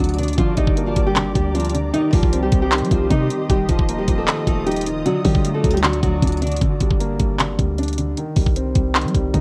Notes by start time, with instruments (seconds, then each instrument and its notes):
Already playing: grand piano D3 F#3 A3, nylon-string guitar F#3 F#4, ambient pad F#4 D5 A5 D6
0.00 808-style bass D2, grand piano D4, closed hi-hat
0.09 closed hi-hat
0.14 closed hi-hat
0.18 grand piano D3, nylon-string guitar D4 D5, closed hi-hat
0.23 closed hi-hat
0.28 closed hi-hat
0.33 closed hi-hat
0.38 808-style bass G1, grand piano D3, nylon-string guitar F3 F4, ambient pad G4 A#5, kick, closed hi-hat
0.57 808-style bass G1, grand piano G3, nylon-string guitar D#4 D#5, kick, closed hi-hat
0.67 kick
0.77 grand piano A#3, closed hi-hat
0.86 nylon-string guitar F3 F4
0.96 808-style bass G1, grand piano G3, kick, closed hi-hat
1.07 nylon-string guitar G3 G4
1.16 grand piano D3, clap, closed hi-hat
1.35 808-style bass D2, grand piano G3, nylon-string guitar G3 G4, kick, closed hi-hat
1.55 nylon-string guitar F3 F4, grand piano D4, closed hi-hat
1.60 closed hi-hat
1.65 closed hi-hat
1.70 closed hi-hat
1.74 grand piano D3, closed hi-hat
1.94 grand piano D#3, nylon-string guitar D#4 D#5, ambient pad D#5 C6 D#6, closed hi-hat
2.13 808-style bass C2, nylon-string guitar F3 F4, grand piano G3, kick, open hi-hat
2.23 kick
2.33 grand piano C4, closed hi-hat
2.43 nylon-string guitar G3 G4
2.52 808-style bass C2, grand piano G3, kick, closed hi-hat
2.62 nylon-string guitar G3 G4
2.72 grand piano D#3, clap, closed hi-hat
2.78 808-style bass G3, closed hi-hat
2.85 closed hi-hat
2.91 808-style bass C2, nylon-string guitar F3 F4, grand piano G3, kick, closed hi-hat
3.10 808-style bass C3, grand piano D#4, nylon-string guitar D#4 D#5, kick, closed hi-hat
3.30 grand piano D#3, closed hi-hat
3.50 808-style bass D#1, grand piano D#3, nylon-string guitar G3 G4, ambient pad F4 A#5 D#6, kick, closed hi-hat
3.69 808-style bass D#1, grand piano F3, nylon-string guitar F3 F4, kick, closed hi-hat
3.79 kick
3.89 grand piano A#3, closed hi-hat
3.98 nylon-string guitar G3 G4
4.08 808-style bass D#1, grand piano F3, kick, closed hi-hat
4.18 nylon-string guitar A3 A4
4.27 grand piano D#3, clap, closed hi-hat
4.47 808-style bass D#1, grand piano F3, nylon-string guitar A3 A4, kick, closed hi-hat
4.66 nylon-string guitar G3 G4, grand piano D#4, closed hi-hat
4.71 closed hi-hat
4.76 closed hi-hat
4.81 closed hi-hat
4.86 grand piano D#3, closed hi-hat
5.05 grand piano D3, nylon-string guitar F#3 F#4, ambient pad F#4 D5 A5 D6, closed hi-hat
5.25 808-style bass D3, grand piano F#3, nylon-string guitar G3 G4, kick, open hi-hat
5.35 kick
5.44 grand piano A3, closed hi-hat
5.54 nylon-string guitar A3 A4
5.64 808-style bass D2, grand piano F#3, kick, closed hi-hat
5.71 nylon-string guitar G4, closed hi-hat
5.75 nylon-string guitar G3, closed hi-hat
5.83 grand piano D3, nylon-string guitar F#3 F#4, clap, closed hi-hat
5.93 closed hi-hat
6.03 808-style bass D2, grand piano F#3, nylon-string guitar F#3 F#4, kick, closed hi-hat
6.22 808-style bass D2, grand piano D4, kick, closed hi-hat
6.27 closed hi-hat
6.32 closed hi-hat
6.37 closed hi-hat
6.42 grand piano D3, nylon-string guitar D4 D5, closed hi-hat
6.47 closed hi-hat
6.52 closed hi-hat
6.57 closed hi-hat
6.61 808-style bass G1, grand piano D3, kick, closed hi-hat
6.81 808-style bass G1, grand piano G3, kick, closed hi-hat
6.91 kick
7.00 grand piano A#3, closed hi-hat
7.20 808-style bass G1, grand piano G3, kick, closed hi-hat
7.39 grand piano D3, clap, closed hi-hat
7.59 808-style bass D2, grand piano G3, kick, closed hi-hat
7.78 grand piano D4, closed hi-hat
7.83 closed hi-hat
7.88 closed hi-hat
7.93 closed hi-hat
7.98 grand piano D3, closed hi-hat
8.17 grand piano D#3, closed hi-hat
8.36 808-style bass C2, grand piano G3, kick, open hi-hat
8.46 kick
8.56 grand piano C4, closed hi-hat
8.75 808-style bass C2, grand piano G3, kick, closed hi-hat
8.95 grand piano D#3, clap, closed hi-hat
9.02 808-style bass G3, closed hi-hat
9.08 closed hi-hat
9.15 808-style bass C2, grand piano G3, kick, closed hi-hat
9.34 808-style bass C3, grand piano D#4, kick, closed hi-hat